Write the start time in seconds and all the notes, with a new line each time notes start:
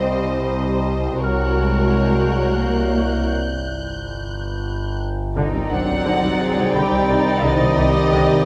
Already playing: C2 G3 C4 C5 D#5 C7
1.22 C2 F#4 A#4 C#5 F6 F#6
1.57 G#3
1.93 G6
2.61 A#3
3.31 G1
5.36 C2 D3 D#3 C4 D#4 D5 G5 A#5
5.53 C2 G3
5.70 C2 D#3 F#3 D4 F#5
5.87 C2 G3
6.05 C2 D3 D#4 A6
6.22 C2 G3
6.41 G#4
6.57 C2 G3
6.74 C2 D3 G3 G4 G5 B5
6.91 C2 G3
7.09 C2 D#3 D#4
7.43 C2 D3 D#3 D#4 D#5
7.60 C2 G3
7.77 C2 D#3 G4
7.95 C2 G3
8.11 C2 D3 G5
8.28 C2 G3